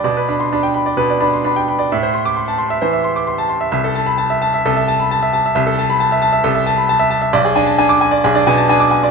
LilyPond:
<<
  \new Staff \with { instrumentName = "Grand piano" } { \time 4/4 \key a \dorian \tempo 4 = 132 << { r8. c'''16 r2. | r8. d'''16 r2. | r8. b''16 r2. | \key a \minor r8. b''16 r2. |
r4 r16 d'''8 r2 r16 | } \\ { d''16 b'16 b''8 b''16 g''16 b''16 d''16 b'16 d''16 b''16 c'''16 b''16 g''16 b''16 d''16 | e''16 c''16 c'''8 c'''16 a''16 c'''16 e''16 c''16 e''16 c'''16 d'''16 c'''16 a''16 c'''16 e''16 | e''16 a'16 a''8 a''16 e''16 a''16 e''16 a'16 e''16 a''16 b''16 a''16 e''16 a''16 e''16 | e''16 a'16 a''8 a''16 e''16 a''16 e''16 a'16 e''16 a''16 b''16 a''16 e''16 a''16 e''16 |
d''16 gis'16 gis''16 a''16 gis''8 gis''16 d''16 gis'16 d''16 gis''16 a''16 gis''16 d'''16 gis''16 d''16 | } >> }
  \new Staff \with { instrumentName = "Grand piano" } { \clef bass \time 4/4 \key a \dorian b,8 d'8 d'8 r8 b,8 d'8 d'8 r8 | a,2 e8 r4. | c,2 c,2 | \key a \minor c,2 c,2 |
b,,8 d'8 d'8 r8 b,,16 d'16 b,8 d'8 r8 | }
>>